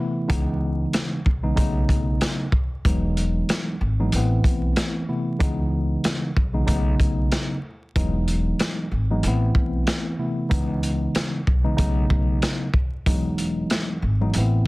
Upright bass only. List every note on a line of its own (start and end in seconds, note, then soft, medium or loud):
0.30 0.84 C#2 loud
1.26 1.53 B1 medium
1.57 1.84 B1 loud
1.89 2.16 B1 medium
2.85 3.39 E1 loud
3.81 4.08 G#1 medium
4.13 4.40 A1 loud
4.44 4.71 B1 medium
5.40 5.95 C#2 loud
6.37 6.63 B1 medium
6.68 6.95 B1 loud
7.00 7.27 B1 medium
7.96 8.50 E1 loud
8.91 9.19 G#1 medium
9.23 9.50 A1 loud
9.55 9.82 B1 medium
10.51 11.05 C#2 loud
11.47 11.74 B1 medium
11.79 12.06 B1 loud
12.10 12.37 B1 medium
13.06 13.61 E1 loud
14.02 14.29 G#1 medium
14.34 14.61 A1 medium